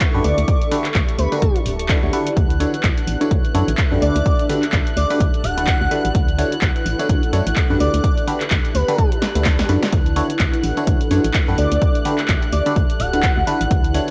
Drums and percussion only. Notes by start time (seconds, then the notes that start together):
0.00 kick, clap, closed hi-hat
0.24 open hi-hat
0.38 closed hi-hat
0.48 kick, closed hi-hat
0.61 closed hi-hat
0.71 open hi-hat
0.85 clap, closed hi-hat
0.95 kick, clap, closed hi-hat
1.09 closed hi-hat
1.19 open hi-hat
1.32 closed hi-hat
1.42 kick, closed hi-hat
1.56 closed hi-hat
1.66 open hi-hat
1.80 closed hi-hat
1.89 kick, clap, closed hi-hat
2.13 open hi-hat
2.27 closed hi-hat
2.37 kick, closed hi-hat
2.51 closed hi-hat
2.61 open hi-hat
2.74 closed hi-hat
2.84 kick, clap, closed hi-hat
2.98 closed hi-hat
3.08 open hi-hat
3.21 closed hi-hat
3.31 kick, closed hi-hat
3.45 closed hi-hat
3.55 open hi-hat
3.69 closed hi-hat
3.78 kick, clap, closed hi-hat
4.02 open hi-hat
4.16 closed hi-hat
4.26 kick, closed hi-hat
4.39 closed hi-hat
4.49 open hi-hat
4.62 clap, closed hi-hat
4.73 kick, clap, closed hi-hat
4.87 closed hi-hat
4.97 open hi-hat
5.10 closed hi-hat
5.20 kick, closed hi-hat
5.34 closed hi-hat
5.44 open hi-hat
5.58 closed hi-hat
5.67 kick, clap, closed hi-hat
5.91 open hi-hat
6.05 closed hi-hat
6.15 kick, closed hi-hat
6.28 closed hi-hat
6.38 open hi-hat
6.52 closed hi-hat
6.62 kick, clap, closed hi-hat
6.76 closed hi-hat
6.86 open hi-hat
6.99 closed hi-hat
7.09 kick, closed hi-hat
7.23 closed hi-hat
7.33 open hi-hat
7.47 closed hi-hat
7.56 kick, clap, closed hi-hat
7.80 open hi-hat
7.94 closed hi-hat
8.04 kick, closed hi-hat
8.17 closed hi-hat
8.27 open hi-hat
8.41 clap, closed hi-hat
8.51 kick, clap, closed hi-hat
8.65 closed hi-hat
8.75 open hi-hat
8.88 closed hi-hat
8.98 kick, closed hi-hat
9.12 closed hi-hat
9.22 snare, open hi-hat
9.35 closed hi-hat
9.45 kick, snare, clap, closed hi-hat
9.59 snare, closed hi-hat
9.69 open hi-hat
9.83 snare, closed hi-hat
9.93 kick, closed hi-hat
10.06 closed hi-hat
10.16 open hi-hat
10.30 closed hi-hat
10.39 kick, clap, closed hi-hat
10.54 closed hi-hat
10.64 open hi-hat
10.77 closed hi-hat
10.87 kick, closed hi-hat
11.01 closed hi-hat
11.11 open hi-hat
11.24 closed hi-hat
11.34 kick, clap, closed hi-hat
11.58 open hi-hat
11.72 closed hi-hat
11.82 kick, closed hi-hat
11.95 closed hi-hat
12.05 open hi-hat
12.18 clap, closed hi-hat
12.28 kick, clap, closed hi-hat
12.42 closed hi-hat
12.53 open hi-hat
12.66 closed hi-hat
12.76 kick, closed hi-hat
12.90 closed hi-hat
13.00 open hi-hat
13.13 closed hi-hat
13.23 kick, clap, closed hi-hat
13.47 open hi-hat
13.61 closed hi-hat
13.71 kick, closed hi-hat
13.84 closed hi-hat
13.94 open hi-hat